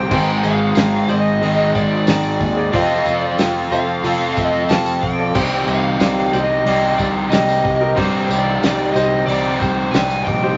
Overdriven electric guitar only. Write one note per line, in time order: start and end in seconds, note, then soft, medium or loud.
0.00 0.12 C4 medium
0.10 1.40 G#2 medium
0.10 1.40 D#3 medium
0.10 1.41 G#3 medium
0.10 1.42 C4 loud
0.10 1.41 D#4 medium
0.10 1.41 G#4 loud
1.41 2.71 G#2 medium
1.41 2.71 D#3 medium
1.41 2.72 G#3 medium
1.41 2.73 C4 medium
1.41 2.72 D#4 medium
1.41 2.72 G#4 medium
2.73 4.02 F3 medium
2.73 4.05 C4 medium
2.73 4.03 F4 medium
2.73 4.04 A4 loud
4.04 5.34 F3 medium
4.04 5.35 C4 medium
4.04 5.34 F4 medium
4.04 5.35 A4 medium
5.34 6.65 C3 medium
5.34 6.66 G3 loud
5.34 6.66 C4 medium
5.34 6.67 D#4 medium
5.34 6.67 G4 loud
6.66 7.95 C3 medium
6.66 7.96 G3 medium
6.66 7.97 C4 medium
6.66 7.98 D#4 medium
6.66 7.96 G4 medium
7.96 9.26 C3 medium
7.96 9.26 G3 medium
7.96 9.28 C4 loud
7.96 9.29 D#4 loud
7.96 9.27 G4 loud
9.27 10.57 C3 medium
9.27 10.57 G3 medium
9.27 10.57 C4 medium
9.27 10.57 D#4 medium
9.27 10.57 G4 medium